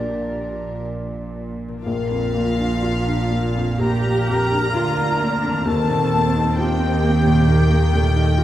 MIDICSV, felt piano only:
0, 0, Header, 1, 2, 480
1, 0, Start_track
1, 0, Key_signature, -2, "major"
1, 0, Tempo, 1020408
1, 871, Tempo, 978793
1, 872, Time_signature, 4, 2, 24, 8
1, 1831, Tempo, 927357
1, 2791, Tempo, 898204
1, 4273, End_track
2, 0, Start_track
2, 0, Title_t, "Felt piano"
2, 0, Program_c, 0, 0
2, 0, Control_c, 0, 64, 127
2, 0, Note_on_c, 0, 34, 51
2, 0, Note_on_c, 0, 46, 44
2, 0, Note_on_c, 0, 58, 39
2, 0, Note_on_c, 0, 62, 36
2, 0, Note_on_c, 0, 67, 45
2, 0, Note_on_c, 0, 79, 62
2, 199, Note_off_c, 0, 46, 0
2, 376, Note_off_c, 0, 79, 0
2, 852, Note_off_c, 0, 34, 0
2, 852, Note_off_c, 0, 58, 0
2, 853, Note_off_c, 0, 62, 0
2, 854, Note_off_c, 0, 67, 0
2, 876, Note_on_c, 0, 34, 64
2, 880, Control_c, 0, 64, 0
2, 955, Control_c, 0, 64, 127
2, 995, Note_on_c, 0, 41, 52
2, 1110, Note_on_c, 0, 58, 61
2, 1180, Note_off_c, 0, 41, 0
2, 1231, Note_on_c, 0, 62, 53
2, 1296, Note_off_c, 0, 58, 0
2, 1349, Note_on_c, 0, 65, 67
2, 1417, Note_off_c, 0, 62, 0
2, 1465, Note_on_c, 0, 62, 57
2, 1539, Note_off_c, 0, 65, 0
2, 1585, Note_on_c, 0, 58, 53
2, 1662, Note_off_c, 0, 62, 0
2, 1705, Note_on_c, 0, 41, 59
2, 1783, Note_off_c, 0, 58, 0
2, 1814, Note_off_c, 0, 34, 0
2, 1826, Note_on_c, 0, 34, 57
2, 1904, Note_off_c, 0, 41, 0
2, 1957, Note_on_c, 0, 58, 56
2, 2078, Note_on_c, 0, 41, 58
2, 2149, Note_off_c, 0, 58, 0
2, 2199, Note_on_c, 0, 62, 53
2, 2269, Note_off_c, 0, 41, 0
2, 2318, Note_on_c, 0, 65, 67
2, 2388, Note_off_c, 0, 62, 0
2, 2437, Note_on_c, 0, 62, 57
2, 2507, Note_off_c, 0, 65, 0
2, 2553, Note_on_c, 0, 58, 63
2, 2626, Note_off_c, 0, 62, 0
2, 2671, Note_on_c, 0, 41, 50
2, 2744, Note_off_c, 0, 58, 0
2, 2768, Note_off_c, 0, 34, 0
2, 2785, Note_on_c, 0, 39, 77
2, 2791, Note_off_c, 0, 41, 0
2, 2801, Control_c, 0, 64, 0
2, 2896, Control_c, 0, 64, 127
2, 2916, Note_on_c, 0, 46, 53
2, 3039, Note_on_c, 0, 58, 53
2, 3108, Note_off_c, 0, 46, 0
2, 3159, Note_on_c, 0, 63, 59
2, 3230, Note_off_c, 0, 58, 0
2, 3281, Note_on_c, 0, 65, 63
2, 3348, Note_off_c, 0, 63, 0
2, 3398, Note_on_c, 0, 63, 55
2, 3469, Note_off_c, 0, 65, 0
2, 3522, Note_on_c, 0, 58, 59
2, 3588, Note_off_c, 0, 63, 0
2, 3641, Note_on_c, 0, 46, 60
2, 3710, Note_off_c, 0, 58, 0
2, 3730, Note_off_c, 0, 39, 0
2, 3755, Note_on_c, 0, 39, 57
2, 3830, Note_off_c, 0, 46, 0
2, 3879, Note_on_c, 0, 58, 57
2, 4006, Note_on_c, 0, 46, 60
2, 4068, Note_off_c, 0, 58, 0
2, 4121, Note_on_c, 0, 63, 61
2, 4190, Note_off_c, 0, 46, 0
2, 4242, Note_on_c, 0, 65, 73
2, 4273, Note_off_c, 0, 39, 0
2, 4273, Note_off_c, 0, 63, 0
2, 4273, Note_off_c, 0, 65, 0
2, 4273, End_track
0, 0, End_of_file